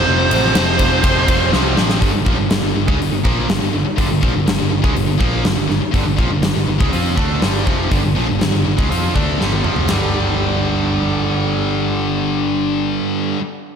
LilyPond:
<<
  \new Staff \with { instrumentName = "Lead electric guitar" } { \time 4/4 \key f \lydian \tempo 4 = 122 c''2. r4 | r1 | r1 | r1 |
r1 | r1 | r1 | }
  \new Staff \with { instrumentName = "Distorted electric guitar" } { \clef bass \time 4/4 \key f \lydian <f, c f a c'>4 <f, c f a c'>4. <f, c f a c'>4 r8 | r1 | r1 | r1 |
r1 | r1 | r1 | }
  \new Staff \with { instrumentName = "Distorted electric guitar" } { \clef bass \time 4/4 \key f \lydian <f, c f>8 <f, c f>8 <f, c f>8 <f, c f>8 <f, c f>8 <f, c f>8 <f, c f>8 <f, c f>8 | <g, d>16 <g, d>16 <bes, f>16 <g, d>16 <g, d>16 <g, d>16 <g, d>16 <cis aes>16 <g, d>16 <g, d>16 <bes, f bes>8 <g, d>16 <g, d>16 <g, d>16 r16 | <g, d>16 <g, d>16 <bes, f>16 <g, d>16 <g, d>16 <g, d>16 <g, d>16 <cis aes>16 <g, d>16 <g, d>16 <bes, f bes>8 <g, d>16 <g, d>16 <g, d>16 r16 | <g, d>16 <g, d>16 <bes, f>16 <g, d>16 <g, d>16 <g, d>16 <g, d>16 <cis aes>16 <f c' f'>8 <d a d'>8 <g, d g>8 <f, c f>8 |
<g, d>16 <g, d>16 <bes, f>16 <g, d>16 <g, d>16 <g, d>16 <g, d>16 <cis aes>16 <f c' f'>8 <d a d'>8 <g, d g>8 <f, c f>8 | <g, d g>1~ | <g, d g>1 | }
  \new Staff \with { instrumentName = "Distorted electric guitar" } { \clef bass \time 4/4 \key f \lydian <f, c f>8 <f, c f>8 <f, c f>8 <f, c f>8 <f, c f>8 <f, c f>8 <f, c f>8 <f, c f>8 | <g, d>16 <g, d>16 <bes, f>16 <g, d>16 <g, d>16 <g, d>16 <g, d>16 <cis aes>16 <g, d>16 <g, d>16 <bes, f bes>8 <g, d>16 <g, d>16 <g, d>16 r16 | <g, d>16 <g, d>16 <bes, f>16 <g, d>16 <g, d>16 <g, d>16 <g, d>16 <cis aes>16 <g, d>16 <g, d>16 <bes, f bes>8 <g, d>16 <g, d>16 <g, d>16 r16 | <g, d>16 <g, d>16 <bes, f>16 <g, d>16 <g, d>16 <g, d>16 <g, d>16 <cis aes>16 <f c' f'>8 <d a d'>8 <g, d g>8 <f, c f>8 |
<g, d>16 <g, d>16 <bes, f>16 <g, d>16 <g, d>16 <g, d>16 <g, d>16 <cis aes>16 <f c' f'>8 <d a d'>8 <g, d g>8 <f, c f>8 | <g, d g>1~ | <g, d g>1 | }
  \new Staff \with { instrumentName = "Picked electric bass" } { \clef bass \time 4/4 \key f \lydian f,,8 a,,8 f,,8 f,,8 f,,8 f,,8 c,8 a,,8 | g,,16 g,,16 bes,,16 g,,16 g,,16 g,,16 g,,16 cis,16 g,,16 g,,16 bes,,8 g,,16 g,,16 g,,16 r16 | g,,16 g,,16 bes,,16 g,,16 g,,16 g,,16 g,,16 cis,16 g,,16 g,,16 bes,,8 g,,16 g,,16 g,,16 r16 | g,,16 g,,16 bes,,16 g,,16 g,,16 g,,16 g,,16 cis,16 f,8 d,8 g,,8 f,,8 |
g,,16 g,,16 bes,,16 g,,16 g,,16 g,,16 g,,16 cis,16 f,8 d,8 g,,8 f,,8 | g,,1~ | g,,1 | }
  \new DrumStaff \with { instrumentName = "Drums" } \drummode { \time 4/4 r8 cymr8 <cymr sn>8 <bd cymr>8 <bd cymr>8 <bd cymr>8 sn8 sn16 sn16 | <hho bd>8 bd8 <hho sn>8. bd16 hho8 bd8 <hho sn>4 | <hho bd>8 bd8 <hho sn>8. bd16 hho8 bd8 <hho sn>8 sn8 | <hho bd>8 bd8 <hho sn>8. bd16 hho8 bd8 <hho sn>8 bd8 |
<hho bd>4 <hho sn>8. bd16 hho8 bd8 sn16 tommh16 toml16 tomfh16 | <rb sn>4 r4 r4 r4 | r4 r4 r4 r4 | }
>>